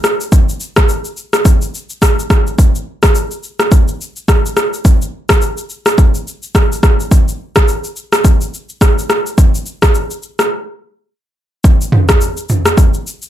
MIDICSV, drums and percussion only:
0, 0, Header, 1, 2, 480
1, 0, Start_track
1, 0, Tempo, 566038
1, 272, Time_signature, 4, 2, 24, 8
1, 11274, End_track
2, 0, Start_track
2, 0, Title_t, "Drums"
2, 33, Note_on_c, 9, 37, 91
2, 33, Note_on_c, 9, 82, 55
2, 118, Note_off_c, 9, 37, 0
2, 118, Note_off_c, 9, 82, 0
2, 175, Note_on_c, 9, 82, 53
2, 260, Note_off_c, 9, 82, 0
2, 272, Note_on_c, 9, 36, 99
2, 273, Note_on_c, 9, 82, 73
2, 357, Note_off_c, 9, 36, 0
2, 357, Note_off_c, 9, 82, 0
2, 416, Note_on_c, 9, 82, 51
2, 501, Note_off_c, 9, 82, 0
2, 511, Note_on_c, 9, 82, 50
2, 595, Note_off_c, 9, 82, 0
2, 648, Note_on_c, 9, 37, 118
2, 649, Note_on_c, 9, 82, 54
2, 654, Note_on_c, 9, 36, 94
2, 733, Note_off_c, 9, 37, 0
2, 734, Note_off_c, 9, 82, 0
2, 739, Note_off_c, 9, 36, 0
2, 754, Note_on_c, 9, 82, 68
2, 839, Note_off_c, 9, 82, 0
2, 888, Note_on_c, 9, 82, 49
2, 973, Note_off_c, 9, 82, 0
2, 991, Note_on_c, 9, 82, 47
2, 1076, Note_off_c, 9, 82, 0
2, 1129, Note_on_c, 9, 37, 94
2, 1131, Note_on_c, 9, 82, 54
2, 1214, Note_off_c, 9, 37, 0
2, 1215, Note_off_c, 9, 82, 0
2, 1231, Note_on_c, 9, 36, 96
2, 1232, Note_on_c, 9, 82, 72
2, 1316, Note_off_c, 9, 36, 0
2, 1316, Note_off_c, 9, 82, 0
2, 1371, Note_on_c, 9, 82, 47
2, 1456, Note_off_c, 9, 82, 0
2, 1480, Note_on_c, 9, 82, 48
2, 1565, Note_off_c, 9, 82, 0
2, 1608, Note_on_c, 9, 82, 44
2, 1693, Note_off_c, 9, 82, 0
2, 1712, Note_on_c, 9, 36, 83
2, 1714, Note_on_c, 9, 82, 76
2, 1717, Note_on_c, 9, 37, 95
2, 1796, Note_off_c, 9, 36, 0
2, 1799, Note_off_c, 9, 82, 0
2, 1801, Note_off_c, 9, 37, 0
2, 1860, Note_on_c, 9, 82, 57
2, 1945, Note_off_c, 9, 82, 0
2, 1952, Note_on_c, 9, 36, 105
2, 1953, Note_on_c, 9, 37, 89
2, 1953, Note_on_c, 9, 82, 55
2, 2036, Note_off_c, 9, 36, 0
2, 2038, Note_off_c, 9, 37, 0
2, 2038, Note_off_c, 9, 82, 0
2, 2095, Note_on_c, 9, 82, 52
2, 2180, Note_off_c, 9, 82, 0
2, 2192, Note_on_c, 9, 36, 101
2, 2193, Note_on_c, 9, 82, 70
2, 2277, Note_off_c, 9, 36, 0
2, 2278, Note_off_c, 9, 82, 0
2, 2335, Note_on_c, 9, 82, 52
2, 2420, Note_off_c, 9, 82, 0
2, 2567, Note_on_c, 9, 37, 110
2, 2568, Note_on_c, 9, 82, 55
2, 2573, Note_on_c, 9, 36, 90
2, 2652, Note_off_c, 9, 37, 0
2, 2652, Note_off_c, 9, 82, 0
2, 2658, Note_off_c, 9, 36, 0
2, 2672, Note_on_c, 9, 82, 67
2, 2757, Note_off_c, 9, 82, 0
2, 2808, Note_on_c, 9, 82, 49
2, 2893, Note_off_c, 9, 82, 0
2, 2910, Note_on_c, 9, 82, 45
2, 2995, Note_off_c, 9, 82, 0
2, 3049, Note_on_c, 9, 37, 92
2, 3050, Note_on_c, 9, 82, 57
2, 3134, Note_off_c, 9, 37, 0
2, 3135, Note_off_c, 9, 82, 0
2, 3151, Note_on_c, 9, 36, 101
2, 3151, Note_on_c, 9, 82, 72
2, 3236, Note_off_c, 9, 36, 0
2, 3236, Note_off_c, 9, 82, 0
2, 3291, Note_on_c, 9, 82, 49
2, 3375, Note_off_c, 9, 82, 0
2, 3402, Note_on_c, 9, 82, 51
2, 3486, Note_off_c, 9, 82, 0
2, 3530, Note_on_c, 9, 82, 43
2, 3615, Note_off_c, 9, 82, 0
2, 3632, Note_on_c, 9, 36, 88
2, 3634, Note_on_c, 9, 82, 78
2, 3637, Note_on_c, 9, 37, 89
2, 3717, Note_off_c, 9, 36, 0
2, 3719, Note_off_c, 9, 82, 0
2, 3722, Note_off_c, 9, 37, 0
2, 3780, Note_on_c, 9, 82, 59
2, 3865, Note_off_c, 9, 82, 0
2, 3872, Note_on_c, 9, 37, 88
2, 3872, Note_on_c, 9, 82, 55
2, 3957, Note_off_c, 9, 37, 0
2, 3957, Note_off_c, 9, 82, 0
2, 4016, Note_on_c, 9, 82, 54
2, 4100, Note_off_c, 9, 82, 0
2, 4112, Note_on_c, 9, 36, 96
2, 4112, Note_on_c, 9, 82, 68
2, 4197, Note_off_c, 9, 36, 0
2, 4197, Note_off_c, 9, 82, 0
2, 4256, Note_on_c, 9, 82, 51
2, 4340, Note_off_c, 9, 82, 0
2, 4488, Note_on_c, 9, 37, 119
2, 4488, Note_on_c, 9, 82, 55
2, 4493, Note_on_c, 9, 36, 90
2, 4573, Note_off_c, 9, 37, 0
2, 4573, Note_off_c, 9, 82, 0
2, 4578, Note_off_c, 9, 36, 0
2, 4593, Note_on_c, 9, 82, 64
2, 4677, Note_off_c, 9, 82, 0
2, 4727, Note_on_c, 9, 82, 50
2, 4812, Note_off_c, 9, 82, 0
2, 4830, Note_on_c, 9, 82, 49
2, 4914, Note_off_c, 9, 82, 0
2, 4968, Note_on_c, 9, 37, 99
2, 4969, Note_on_c, 9, 82, 54
2, 5053, Note_off_c, 9, 37, 0
2, 5054, Note_off_c, 9, 82, 0
2, 5071, Note_on_c, 9, 36, 98
2, 5072, Note_on_c, 9, 82, 71
2, 5156, Note_off_c, 9, 36, 0
2, 5156, Note_off_c, 9, 82, 0
2, 5211, Note_on_c, 9, 82, 48
2, 5296, Note_off_c, 9, 82, 0
2, 5322, Note_on_c, 9, 82, 52
2, 5407, Note_off_c, 9, 82, 0
2, 5449, Note_on_c, 9, 82, 45
2, 5534, Note_off_c, 9, 82, 0
2, 5553, Note_on_c, 9, 36, 85
2, 5555, Note_on_c, 9, 82, 73
2, 5558, Note_on_c, 9, 37, 94
2, 5637, Note_off_c, 9, 36, 0
2, 5640, Note_off_c, 9, 82, 0
2, 5642, Note_off_c, 9, 37, 0
2, 5701, Note_on_c, 9, 82, 56
2, 5786, Note_off_c, 9, 82, 0
2, 5792, Note_on_c, 9, 36, 105
2, 5793, Note_on_c, 9, 37, 89
2, 5794, Note_on_c, 9, 82, 54
2, 5877, Note_off_c, 9, 36, 0
2, 5878, Note_off_c, 9, 37, 0
2, 5878, Note_off_c, 9, 82, 0
2, 5936, Note_on_c, 9, 82, 52
2, 6021, Note_off_c, 9, 82, 0
2, 6033, Note_on_c, 9, 36, 99
2, 6034, Note_on_c, 9, 82, 69
2, 6117, Note_off_c, 9, 36, 0
2, 6119, Note_off_c, 9, 82, 0
2, 6176, Note_on_c, 9, 82, 52
2, 6261, Note_off_c, 9, 82, 0
2, 6409, Note_on_c, 9, 37, 117
2, 6409, Note_on_c, 9, 82, 58
2, 6414, Note_on_c, 9, 36, 94
2, 6494, Note_off_c, 9, 37, 0
2, 6494, Note_off_c, 9, 82, 0
2, 6499, Note_off_c, 9, 36, 0
2, 6513, Note_on_c, 9, 82, 64
2, 6598, Note_off_c, 9, 82, 0
2, 6649, Note_on_c, 9, 82, 50
2, 6734, Note_off_c, 9, 82, 0
2, 6752, Note_on_c, 9, 82, 48
2, 6837, Note_off_c, 9, 82, 0
2, 6890, Note_on_c, 9, 37, 98
2, 6892, Note_on_c, 9, 82, 56
2, 6975, Note_off_c, 9, 37, 0
2, 6976, Note_off_c, 9, 82, 0
2, 6992, Note_on_c, 9, 36, 97
2, 6992, Note_on_c, 9, 82, 73
2, 7077, Note_off_c, 9, 36, 0
2, 7077, Note_off_c, 9, 82, 0
2, 7132, Note_on_c, 9, 82, 47
2, 7217, Note_off_c, 9, 82, 0
2, 7242, Note_on_c, 9, 82, 51
2, 7327, Note_off_c, 9, 82, 0
2, 7370, Note_on_c, 9, 82, 43
2, 7455, Note_off_c, 9, 82, 0
2, 7472, Note_on_c, 9, 36, 88
2, 7474, Note_on_c, 9, 82, 74
2, 7477, Note_on_c, 9, 37, 93
2, 7557, Note_off_c, 9, 36, 0
2, 7559, Note_off_c, 9, 82, 0
2, 7562, Note_off_c, 9, 37, 0
2, 7620, Note_on_c, 9, 82, 57
2, 7705, Note_off_c, 9, 82, 0
2, 7714, Note_on_c, 9, 37, 89
2, 7714, Note_on_c, 9, 82, 56
2, 7799, Note_off_c, 9, 37, 0
2, 7799, Note_off_c, 9, 82, 0
2, 7857, Note_on_c, 9, 82, 52
2, 7941, Note_off_c, 9, 82, 0
2, 7953, Note_on_c, 9, 36, 101
2, 7954, Note_on_c, 9, 82, 70
2, 8038, Note_off_c, 9, 36, 0
2, 8039, Note_off_c, 9, 82, 0
2, 8096, Note_on_c, 9, 82, 52
2, 8181, Note_off_c, 9, 82, 0
2, 8191, Note_on_c, 9, 82, 49
2, 8276, Note_off_c, 9, 82, 0
2, 8330, Note_on_c, 9, 37, 115
2, 8330, Note_on_c, 9, 82, 58
2, 8334, Note_on_c, 9, 36, 95
2, 8415, Note_off_c, 9, 37, 0
2, 8415, Note_off_c, 9, 82, 0
2, 8419, Note_off_c, 9, 36, 0
2, 8435, Note_on_c, 9, 82, 67
2, 8519, Note_off_c, 9, 82, 0
2, 8570, Note_on_c, 9, 82, 49
2, 8654, Note_off_c, 9, 82, 0
2, 8672, Note_on_c, 9, 82, 47
2, 8757, Note_off_c, 9, 82, 0
2, 8811, Note_on_c, 9, 37, 95
2, 8812, Note_on_c, 9, 82, 53
2, 8896, Note_off_c, 9, 37, 0
2, 8897, Note_off_c, 9, 82, 0
2, 9873, Note_on_c, 9, 36, 105
2, 9874, Note_on_c, 9, 82, 74
2, 9958, Note_off_c, 9, 36, 0
2, 9958, Note_off_c, 9, 82, 0
2, 10017, Note_on_c, 9, 82, 54
2, 10102, Note_off_c, 9, 82, 0
2, 10111, Note_on_c, 9, 45, 98
2, 10195, Note_off_c, 9, 45, 0
2, 10250, Note_on_c, 9, 37, 120
2, 10251, Note_on_c, 9, 82, 60
2, 10255, Note_on_c, 9, 36, 95
2, 10335, Note_off_c, 9, 37, 0
2, 10336, Note_off_c, 9, 82, 0
2, 10340, Note_off_c, 9, 36, 0
2, 10355, Note_on_c, 9, 82, 70
2, 10440, Note_off_c, 9, 82, 0
2, 10490, Note_on_c, 9, 82, 53
2, 10574, Note_off_c, 9, 82, 0
2, 10593, Note_on_c, 9, 82, 51
2, 10598, Note_on_c, 9, 45, 65
2, 10677, Note_off_c, 9, 82, 0
2, 10683, Note_off_c, 9, 45, 0
2, 10732, Note_on_c, 9, 37, 101
2, 10733, Note_on_c, 9, 82, 59
2, 10816, Note_off_c, 9, 37, 0
2, 10818, Note_off_c, 9, 82, 0
2, 10833, Note_on_c, 9, 36, 103
2, 10834, Note_on_c, 9, 82, 74
2, 10918, Note_off_c, 9, 36, 0
2, 10919, Note_off_c, 9, 82, 0
2, 10972, Note_on_c, 9, 82, 50
2, 11057, Note_off_c, 9, 82, 0
2, 11082, Note_on_c, 9, 82, 54
2, 11167, Note_off_c, 9, 82, 0
2, 11211, Note_on_c, 9, 82, 46
2, 11274, Note_off_c, 9, 82, 0
2, 11274, End_track
0, 0, End_of_file